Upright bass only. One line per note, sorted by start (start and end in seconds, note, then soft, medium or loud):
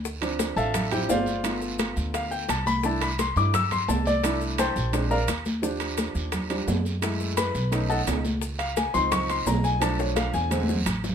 0.00 0.51 D2 medium
0.56 1.05 A1 medium
1.09 1.91 G1 medium
1.97 2.45 D2 loud
2.49 3.31 C2 medium
3.36 3.85 G2 medium
3.88 4.70 C2 medium
4.76 5.25 A#1 loud
5.28 6.09 D#2 medium
6.15 6.64 D#2 medium
6.67 7.49 F#2 medium
7.55 8.04 B1 medium
8.07 8.89 C#2 medium
8.95 9.43 C#2 medium
9.46 10.28 B1 medium
10.34 10.83 E2 medium
10.86 11.15 A1 medium